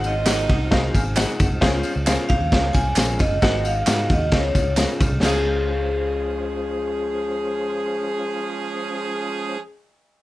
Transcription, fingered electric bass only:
0.00 0.46 G#1 loud
0.49 0.89 C2 loud
0.95 1.24 G#1 medium
1.40 1.50 F#1 loud
1.51 1.61 C2 medium
1.62 1.81 C#2 loud
1.96 2.15 C#2 loud
2.30 2.40 C2 medium
2.41 2.50 D#2 loud
2.52 2.72 C#2 loud
2.74 2.94 C2 medium
2.97 3.16 A#1 loud
3.20 3.40 F#1 loud
3.42 3.81 G#1 loud
3.87 4.07 G#2 loud
4.10 4.29 D#2 medium
4.32 4.52 C#2 loud
4.55 4.84 C#2 loud
5.00 5.10 C2 loud
5.11 5.21 C2 medium
5.22 9.61 C#2 medium

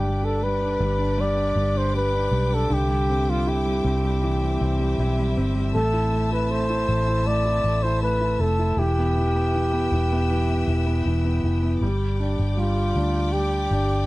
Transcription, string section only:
0.00 2.67 B4 medium
0.00 2.67 D5 soft
0.00 5.70 G5 medium
0.00 5.70 D6 medium
2.71 8.74 C4 medium
2.71 8.74 E5 medium
5.75 8.75 A5 medium
5.75 8.75 E6 medium
8.77 11.79 B4 medium
8.77 11.79 E5 medium
8.77 11.78 G5 medium
8.77 11.78 E6 medium
11.81 14.06 G4 medium
11.81 14.06 D5 medium
11.81 14.06 G5 medium
11.81 14.06 D6 medium

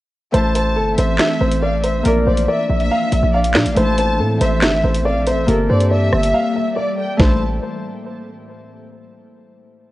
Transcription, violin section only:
0.33 0.94 A5 loud
0.98 1.59 E5 loud
1.62 1.83 F5 medium
1.84 2.04 E5 medium
2.26 2.47 D5 medium
2.48 3.30 E5 loud
3.34 3.54 D5 medium
3.55 3.76 F5 medium
3.77 4.37 A5 loud
4.41 5.01 E5 medium
5.05 5.26 F5 medium
5.27 5.47 E5 medium
5.70 5.90 D5 medium
5.91 6.73 E5 loud
6.77 6.97 D5 medium
6.99 7.19 G5 medium
7.20 7.39 A5 medium

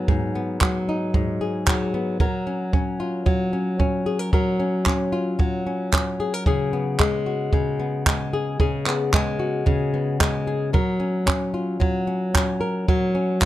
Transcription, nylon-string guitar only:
0.00 0.61 F#3 medium
0.00 0.34 B3 medium
0.00 0.88 D#4 medium
0.00 1.40 G#4 medium
0.08 1.13 G#2 medium
0.35 1.93 B3 medium
0.62 1.67 F#3 medium
0.89 2.26 D#4 medium
1.14 2.26 G#2 medium
1.41 2.20 G#4 medium
1.67 2.20 F#3 medium
1.94 2.26 B3 medium
2.20 3.26 F#3 medium
2.20 4.06 A#4 medium
2.47 2.73 C#4 soft
2.73 3.53 C#4 medium
3.00 5.11 F4 medium
3.26 4.33 F#3 medium
3.53 3.79 C#4 soft
3.79 4.59 C#4 medium
4.06 4.19 G#4 medium
4.19 4.32 A#4 soft
4.33 5.38 F#3 medium
4.33 6.20 A#4 medium
4.60 4.86 C#4 medium
4.86 5.66 C#4 medium
5.12 6.51 F4 medium
5.39 7.00 F#3 medium
5.67 5.93 C#4 medium
5.93 6.73 C#4 medium
6.20 6.34 G#4 medium
6.34 6.47 A#4 soft
6.47 7.52 C#3 medium
6.47 8.32 G#4 medium
6.73 7.78 B3 medium
7.00 8.05 G#3 medium
7.26 9.39 F#4 medium
7.53 8.59 C#3 medium
7.80 8.85 B3 medium
8.07 9.13 G#3 medium
8.33 8.59 G#4 medium
8.60 9.65 C#3 medium
8.60 10.46 G#4 medium
8.86 9.93 B3 medium
9.14 10.19 G#3 medium
9.39 11.53 F#4 medium
9.66 10.79 C#3 medium
9.94 10.79 B3 medium
10.20 10.73 G#3 medium
10.47 10.73 G#4 medium
10.73 11.80 F#3 medium
10.73 12.59 A#4 medium
11.00 11.25 C#4 soft
11.26 12.06 C#4 medium
11.54 13.45 F4 medium
11.80 12.88 F#3 medium
12.07 12.33 C#4 soft
12.34 13.14 C#4 medium
12.61 12.88 A#4 medium
12.89 13.45 F#3 medium
12.89 13.45 A#4 medium
13.15 13.40 C#4 medium
13.41 13.45 C#4 medium

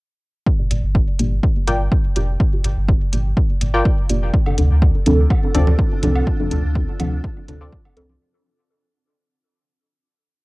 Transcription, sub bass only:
0.71 0.81 G1 medium
0.83 1.03 G1 medium
1.19 1.39 G1 medium
1.68 1.88 G1 medium
2.16 2.36 F1 medium
2.64 2.75 G1 medium
2.77 2.97 G1 medium
3.13 3.33 G1 medium
3.61 3.81 G1 medium
4.09 4.30 F1 medium
4.58 4.68 D2 loud
4.70 4.90 D2 medium
5.06 5.27 D2 medium
5.55 5.75 D2 medium
6.03 6.23 C2 medium
6.51 6.62 D2 medium
6.64 6.84 D2 loud
7.00 7.20 D2 medium
7.48 7.69 D2 medium
7.97 8.17 C2 loud

